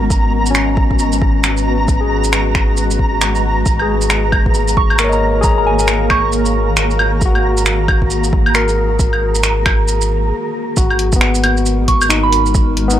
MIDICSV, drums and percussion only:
0, 0, Header, 1, 2, 480
1, 0, Start_track
1, 0, Key_signature, 5, "minor"
1, 0, Tempo, 444444
1, 114, Time_signature, 4, 2, 24, 8
1, 14037, End_track
2, 0, Start_track
2, 0, Title_t, "Drums"
2, 111, Note_on_c, 9, 36, 115
2, 115, Note_on_c, 9, 82, 56
2, 219, Note_off_c, 9, 36, 0
2, 223, Note_off_c, 9, 82, 0
2, 500, Note_on_c, 9, 82, 57
2, 592, Note_off_c, 9, 82, 0
2, 592, Note_on_c, 9, 26, 105
2, 592, Note_on_c, 9, 82, 50
2, 700, Note_off_c, 9, 26, 0
2, 700, Note_off_c, 9, 82, 0
2, 832, Note_on_c, 9, 36, 110
2, 940, Note_off_c, 9, 36, 0
2, 978, Note_on_c, 9, 36, 65
2, 1070, Note_on_c, 9, 82, 54
2, 1086, Note_off_c, 9, 36, 0
2, 1178, Note_off_c, 9, 82, 0
2, 1216, Note_on_c, 9, 82, 54
2, 1313, Note_on_c, 9, 36, 105
2, 1324, Note_off_c, 9, 82, 0
2, 1421, Note_off_c, 9, 36, 0
2, 1553, Note_on_c, 9, 26, 107
2, 1553, Note_on_c, 9, 82, 55
2, 1661, Note_off_c, 9, 26, 0
2, 1661, Note_off_c, 9, 82, 0
2, 1698, Note_on_c, 9, 82, 31
2, 1806, Note_off_c, 9, 82, 0
2, 2032, Note_on_c, 9, 36, 119
2, 2033, Note_on_c, 9, 82, 52
2, 2140, Note_off_c, 9, 36, 0
2, 2141, Note_off_c, 9, 82, 0
2, 2419, Note_on_c, 9, 82, 54
2, 2514, Note_off_c, 9, 82, 0
2, 2514, Note_on_c, 9, 26, 99
2, 2514, Note_on_c, 9, 82, 48
2, 2622, Note_off_c, 9, 26, 0
2, 2622, Note_off_c, 9, 82, 0
2, 2752, Note_on_c, 9, 36, 108
2, 2753, Note_on_c, 9, 26, 58
2, 2860, Note_off_c, 9, 36, 0
2, 2861, Note_off_c, 9, 26, 0
2, 2993, Note_on_c, 9, 82, 54
2, 3101, Note_off_c, 9, 82, 0
2, 3140, Note_on_c, 9, 82, 50
2, 3232, Note_on_c, 9, 36, 59
2, 3248, Note_off_c, 9, 82, 0
2, 3340, Note_off_c, 9, 36, 0
2, 3472, Note_on_c, 9, 26, 111
2, 3472, Note_on_c, 9, 82, 57
2, 3580, Note_off_c, 9, 26, 0
2, 3580, Note_off_c, 9, 82, 0
2, 3621, Note_on_c, 9, 82, 30
2, 3729, Note_off_c, 9, 82, 0
2, 3952, Note_on_c, 9, 36, 112
2, 3952, Note_on_c, 9, 82, 50
2, 4060, Note_off_c, 9, 36, 0
2, 4060, Note_off_c, 9, 82, 0
2, 4098, Note_on_c, 9, 75, 33
2, 4206, Note_off_c, 9, 75, 0
2, 4336, Note_on_c, 9, 82, 53
2, 4428, Note_off_c, 9, 82, 0
2, 4428, Note_on_c, 9, 26, 93
2, 4428, Note_on_c, 9, 82, 50
2, 4536, Note_off_c, 9, 26, 0
2, 4536, Note_off_c, 9, 82, 0
2, 4668, Note_on_c, 9, 75, 57
2, 4671, Note_on_c, 9, 36, 104
2, 4776, Note_off_c, 9, 75, 0
2, 4779, Note_off_c, 9, 36, 0
2, 4818, Note_on_c, 9, 36, 63
2, 4908, Note_on_c, 9, 82, 49
2, 4926, Note_off_c, 9, 36, 0
2, 5016, Note_off_c, 9, 82, 0
2, 5054, Note_on_c, 9, 82, 48
2, 5151, Note_on_c, 9, 36, 102
2, 5162, Note_off_c, 9, 82, 0
2, 5259, Note_off_c, 9, 36, 0
2, 5295, Note_on_c, 9, 75, 47
2, 5387, Note_on_c, 9, 26, 108
2, 5387, Note_on_c, 9, 82, 53
2, 5403, Note_off_c, 9, 75, 0
2, 5495, Note_off_c, 9, 26, 0
2, 5495, Note_off_c, 9, 82, 0
2, 5534, Note_on_c, 9, 82, 30
2, 5642, Note_off_c, 9, 82, 0
2, 5866, Note_on_c, 9, 82, 51
2, 5871, Note_on_c, 9, 36, 111
2, 5974, Note_off_c, 9, 82, 0
2, 5979, Note_off_c, 9, 36, 0
2, 6255, Note_on_c, 9, 82, 53
2, 6348, Note_off_c, 9, 82, 0
2, 6348, Note_on_c, 9, 26, 94
2, 6348, Note_on_c, 9, 82, 48
2, 6456, Note_off_c, 9, 26, 0
2, 6456, Note_off_c, 9, 82, 0
2, 6588, Note_on_c, 9, 26, 55
2, 6588, Note_on_c, 9, 75, 59
2, 6591, Note_on_c, 9, 36, 96
2, 6696, Note_off_c, 9, 26, 0
2, 6696, Note_off_c, 9, 75, 0
2, 6699, Note_off_c, 9, 36, 0
2, 6831, Note_on_c, 9, 82, 52
2, 6939, Note_off_c, 9, 82, 0
2, 6974, Note_on_c, 9, 82, 50
2, 7082, Note_off_c, 9, 82, 0
2, 7309, Note_on_c, 9, 26, 106
2, 7309, Note_on_c, 9, 82, 51
2, 7417, Note_off_c, 9, 26, 0
2, 7417, Note_off_c, 9, 82, 0
2, 7458, Note_on_c, 9, 82, 28
2, 7551, Note_on_c, 9, 75, 64
2, 7566, Note_off_c, 9, 82, 0
2, 7659, Note_off_c, 9, 75, 0
2, 7792, Note_on_c, 9, 82, 54
2, 7793, Note_on_c, 9, 36, 104
2, 7900, Note_off_c, 9, 82, 0
2, 7901, Note_off_c, 9, 36, 0
2, 7940, Note_on_c, 9, 75, 37
2, 8048, Note_off_c, 9, 75, 0
2, 8179, Note_on_c, 9, 82, 56
2, 8273, Note_off_c, 9, 82, 0
2, 8273, Note_on_c, 9, 26, 89
2, 8273, Note_on_c, 9, 82, 50
2, 8381, Note_off_c, 9, 26, 0
2, 8381, Note_off_c, 9, 82, 0
2, 8514, Note_on_c, 9, 36, 93
2, 8514, Note_on_c, 9, 75, 64
2, 8622, Note_off_c, 9, 36, 0
2, 8622, Note_off_c, 9, 75, 0
2, 8660, Note_on_c, 9, 36, 60
2, 8754, Note_on_c, 9, 82, 52
2, 8768, Note_off_c, 9, 36, 0
2, 8862, Note_off_c, 9, 82, 0
2, 8900, Note_on_c, 9, 82, 50
2, 8995, Note_on_c, 9, 36, 94
2, 9008, Note_off_c, 9, 82, 0
2, 9103, Note_off_c, 9, 36, 0
2, 9139, Note_on_c, 9, 75, 54
2, 9232, Note_on_c, 9, 26, 99
2, 9232, Note_on_c, 9, 82, 54
2, 9247, Note_off_c, 9, 75, 0
2, 9340, Note_off_c, 9, 26, 0
2, 9340, Note_off_c, 9, 82, 0
2, 9379, Note_on_c, 9, 82, 28
2, 9487, Note_off_c, 9, 82, 0
2, 9713, Note_on_c, 9, 36, 110
2, 9714, Note_on_c, 9, 82, 55
2, 9821, Note_off_c, 9, 36, 0
2, 9822, Note_off_c, 9, 82, 0
2, 9859, Note_on_c, 9, 75, 35
2, 9967, Note_off_c, 9, 75, 0
2, 10098, Note_on_c, 9, 82, 57
2, 10190, Note_off_c, 9, 82, 0
2, 10190, Note_on_c, 9, 26, 91
2, 10190, Note_on_c, 9, 82, 54
2, 10298, Note_off_c, 9, 26, 0
2, 10298, Note_off_c, 9, 82, 0
2, 10430, Note_on_c, 9, 26, 58
2, 10430, Note_on_c, 9, 75, 66
2, 10433, Note_on_c, 9, 36, 100
2, 10538, Note_off_c, 9, 26, 0
2, 10538, Note_off_c, 9, 75, 0
2, 10541, Note_off_c, 9, 36, 0
2, 10670, Note_on_c, 9, 82, 56
2, 10778, Note_off_c, 9, 82, 0
2, 10817, Note_on_c, 9, 82, 52
2, 10925, Note_off_c, 9, 82, 0
2, 11629, Note_on_c, 9, 82, 58
2, 11631, Note_on_c, 9, 36, 118
2, 11737, Note_off_c, 9, 82, 0
2, 11739, Note_off_c, 9, 36, 0
2, 11777, Note_on_c, 9, 75, 36
2, 11869, Note_on_c, 9, 46, 70
2, 11885, Note_off_c, 9, 75, 0
2, 11977, Note_off_c, 9, 46, 0
2, 12015, Note_on_c, 9, 82, 58
2, 12017, Note_on_c, 9, 36, 102
2, 12108, Note_on_c, 9, 26, 102
2, 12123, Note_off_c, 9, 82, 0
2, 12125, Note_off_c, 9, 36, 0
2, 12216, Note_off_c, 9, 26, 0
2, 12255, Note_on_c, 9, 82, 56
2, 12351, Note_on_c, 9, 46, 65
2, 12351, Note_on_c, 9, 75, 67
2, 12363, Note_off_c, 9, 82, 0
2, 12459, Note_off_c, 9, 46, 0
2, 12459, Note_off_c, 9, 75, 0
2, 12497, Note_on_c, 9, 82, 32
2, 12591, Note_off_c, 9, 82, 0
2, 12591, Note_on_c, 9, 82, 57
2, 12699, Note_off_c, 9, 82, 0
2, 12830, Note_on_c, 9, 36, 62
2, 12830, Note_on_c, 9, 46, 78
2, 12938, Note_off_c, 9, 36, 0
2, 12938, Note_off_c, 9, 46, 0
2, 12976, Note_on_c, 9, 75, 56
2, 12976, Note_on_c, 9, 82, 57
2, 13072, Note_off_c, 9, 82, 0
2, 13072, Note_on_c, 9, 26, 108
2, 13072, Note_on_c, 9, 82, 62
2, 13084, Note_off_c, 9, 75, 0
2, 13180, Note_off_c, 9, 26, 0
2, 13180, Note_off_c, 9, 82, 0
2, 13311, Note_on_c, 9, 46, 63
2, 13419, Note_off_c, 9, 46, 0
2, 13458, Note_on_c, 9, 82, 34
2, 13550, Note_on_c, 9, 36, 118
2, 13551, Note_off_c, 9, 82, 0
2, 13551, Note_on_c, 9, 82, 58
2, 13658, Note_off_c, 9, 36, 0
2, 13659, Note_off_c, 9, 82, 0
2, 13791, Note_on_c, 9, 46, 68
2, 13899, Note_off_c, 9, 46, 0
2, 13934, Note_on_c, 9, 82, 61
2, 14037, Note_off_c, 9, 82, 0
2, 14037, End_track
0, 0, End_of_file